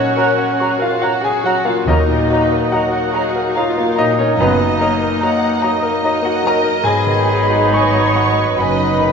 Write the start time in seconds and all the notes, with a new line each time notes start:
Already playing: A#2 F#3 C#4 D#4 F#4 A#4 C#5 D#5
0.17 F#3 A#4 F#5 A#5
0.38 F#5
0.60 F#3 G#4 F#5 A#5 C#6
0.79 F4 A#4 F5
0.83 F4
1.01 F#3 F#4 C#5 F#5 A#5
1.21 F#4 G#4 G#5
1.26 G#4
1.44 F#3 F#4 F#5 A#5
1.65 A#3 F4 F5
1.86 D#2 F#3 A#3 D#4 A#4 D#5 A#5
2.08 A#2
2.30 F#3 F#4 B4 D#5 A#5
2.51 A#4
2.71 F#3 F#4 A#4 D#5 F#5 A#5
2.93 F#5
3.13 F#3 G#4 D#5 A#5
3.36 A#4
3.55 F#3 F4 F#4 A#4 D#5 F5 A#5
3.59 F4
3.78 A#3
3.95 A#2 F#3 D#4 D#5 A#5
4.00 D#4 D#5
4.19 A#3 C#4 C#5
4.38 F#1 F#2 F#3 B3 F#4 B4 D#5 A#5
4.42 B3
4.61 F#3
4.79 F#3 A#3 D#4 F#4 A#4 D#5 A#5
5.01 A#4
5.21 F#3 D#4 D#5 F#5 A#5
5.44 D#5
5.62 F#3 D#5 A#5
5.82 A#4
6.03 F#3 D#4 D#5 A#5
6.22 A#3 F#4 F#5
6.26 F#4
6.42 F#3 A#4 D#5 A#5
6.47 A#4 A#5
6.63 A#3
6.83 G#1 G#2 F#3 B3 D#4 G#4 D#5 G#5 B5
6.88 D#5
7.06 D#3
7.29 D#4
7.50 F#4
7.72 B4 C#5 G#5 C#6
7.95 D#5
8.16 B4 F#5
8.38 B4
8.56 F#1 F#2 F#3 D#4 F#4 B4 D#5 B5
8.61 B3 G#5
8.78 D#4
9.00 D#3 B4